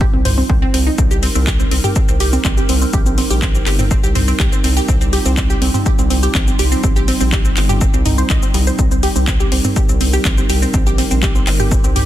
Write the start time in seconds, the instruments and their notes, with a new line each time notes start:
Already playing: analog synth pad G3 C4 D#4 F4
0.01 synth arpeggio sound G4, kick
0.13 analog synth bass C2, synth arpeggio sound C4
0.25 synth arpeggio sound C5, mid tom, open hi-hat
0.38 synth arpeggio sound C4
0.49 analog synth bass C2, synth arpeggio sound C4, kick
0.62 synth arpeggio sound C4
0.74 analog synth bass C2, synth arpeggio sound C4, open hi-hat
0.87 synth arpeggio sound D#4
0.98 analog synth bass C2, synth arpeggio sound C4, analog synth pad A#4, kick, shaker
1.11 synth arpeggio sound G4, shaker
1.23 synth arpeggio sound C4, open hi-hat, shaker
1.35 analog synth bass C2, synth arpeggio sound C4, shaker
1.47 synth arpeggio sound G4, kick, clap, shaker
1.60 synth arpeggio sound C4, shaker
1.71 analog synth bass C2, synth arpeggio sound C4, open hi-hat
1.84 synth arpeggio sound G4, mid tom, shaker
1.96 synth arpeggio sound C4, kick, shaker
2.08 analog synth bass C2, synth arpeggio sound C4, shaker
2.20 synth arpeggio sound G4, open hi-hat, shaker
2.33 synth arpeggio sound C4, shaker
2.45 analog synth bass A#1, synth arpeggio sound C4, kick, clap, shaker
2.57 synth arpeggio sound G4, shaker
2.69 analog synth bass C2, synth arpeggio sound C4, open hi-hat, shaker
2.82 synth arpeggio sound C4, shaker
2.93 analog synth bass A#1, synth arpeggio sound G4, kick, shaker
3.06 synth arpeggio sound C4, shaker
3.18 synth arpeggio sound C4, open hi-hat, shaker
3.30 analog synth bass A#1, synth arpeggio sound G4, shaker
3.42 synth arpeggio sound C4, kick, clap, shaker
3.55 synth arpeggio sound C4, shaker
3.66 analog synth bass G1, synth arpeggio sound G4, clap, open hi-hat, shaker
3.79 synth arpeggio sound C4, mid tom, shaker
3.91 synth arpeggio sound C4, kick, shaker
4.03 analog synth bass C2, synth arpeggio sound G4, shaker
4.15 synth arpeggio sound C4, mid tom, open hi-hat, shaker
4.28 synth arpeggio sound C4, shaker
4.40 analog synth bass C2, synth arpeggio sound G4, kick, clap, shaker
4.52 synth arpeggio sound C4, shaker
4.64 analog synth bass C2, synth arpeggio sound C4, open hi-hat, shaker
4.77 synth arpeggio sound G4, shaker
4.88 analog synth bass C2, synth arpeggio sound C4, analog synth pad F4, kick, shaker
5.01 synth arpeggio sound C4, shaker
5.13 synth arpeggio sound G4, open hi-hat, shaker
5.25 analog synth bass C2, synth arpeggio sound C4, shaker
5.37 synth arpeggio sound C4, kick, clap, shaker
5.50 synth arpeggio sound G4, shaker
5.62 analog synth bass C2, synth arpeggio sound C4, open hi-hat
5.74 synth arpeggio sound C4, mid tom, shaker
5.86 synth arpeggio sound G4, kick, shaker
5.99 analog synth bass C2, synth arpeggio sound C4, shaker
6.10 synth arpeggio sound C4, open hi-hat, shaker
6.23 synth arpeggio sound G4, shaker
6.35 analog synth bass A#1, synth arpeggio sound C4, kick, clap, shaker
6.47 synth arpeggio sound C4, shaker
6.59 analog synth bass C2, synth arpeggio sound G4, open hi-hat, shaker
6.72 synth arpeggio sound C4, shaker
6.83 analog synth bass A#1, synth arpeggio sound C4, kick, shaker
6.96 synth arpeggio sound G4, shaker
7.08 synth arpeggio sound C4, open hi-hat, shaker
7.21 analog synth bass A#1, synth arpeggio sound C4, shaker
7.32 synth arpeggio sound G4, kick, clap, shaker
7.45 synth arpeggio sound C4, shaker
7.57 analog synth bass G1, synth arpeggio sound C4, clap, open hi-hat, shaker
7.69 synth arpeggio sound G4, mid tom, shaker
7.81 synth arpeggio sound C4, kick, shaker
7.94 analog synth bass C2, synth arpeggio sound C4, shaker
8.06 synth arpeggio sound D#4, mid tom, open hi-hat, shaker
8.18 synth arpeggio sound C5, shaker
8.30 analog synth bass C2, synth arpeggio sound D#5, kick, clap, shaker
8.43 synth arpeggio sound C4, shaker
8.54 analog synth bass C2, synth arpeggio sound G3, open hi-hat, shaker
8.67 synth arpeggio sound C5, shaker
8.79 analog synth bass C2, synth arpeggio sound C4, analog synth pad A#4, kick, shaker
8.91 synth arpeggio sound C4, shaker
9.03 synth arpeggio sound G4, open hi-hat, shaker
9.16 analog synth bass C2, synth arpeggio sound C4, shaker
9.27 synth arpeggio sound C4, kick, clap, shaker
9.40 synth arpeggio sound G4, shaker
9.52 analog synth bass C2, synth arpeggio sound C4, open hi-hat
9.64 synth arpeggio sound C4, mid tom, shaker
9.76 synth arpeggio sound G4, kick, shaker
9.89 analog synth bass C2, synth arpeggio sound C4, shaker
10.01 synth arpeggio sound C4, open hi-hat, shaker
10.13 synth arpeggio sound G4, shaker
10.25 analog synth bass A#1, synth arpeggio sound C4, kick, clap, shaker
10.38 synth arpeggio sound C4, shaker
10.49 analog synth bass C2, synth arpeggio sound G4, open hi-hat, shaker
10.62 synth arpeggio sound C4, shaker
10.74 analog synth bass A#1, synth arpeggio sound C4, kick, shaker
10.87 synth arpeggio sound G4, shaker
10.98 synth arpeggio sound C4, open hi-hat, shaker
11.11 analog synth bass A#1, synth arpeggio sound C4, shaker
11.23 synth arpeggio sound G4, kick, clap, shaker
11.35 synth arpeggio sound C4, shaker
11.47 analog synth bass G1, synth arpeggio sound C4, clap, open hi-hat, shaker
11.60 synth arpeggio sound G4, mid tom, shaker
11.71 synth arpeggio sound C4, kick, shaker
11.84 analog synth bass C2, synth arpeggio sound C4, shaker
11.96 synth arpeggio sound G4, mid tom, open hi-hat, shaker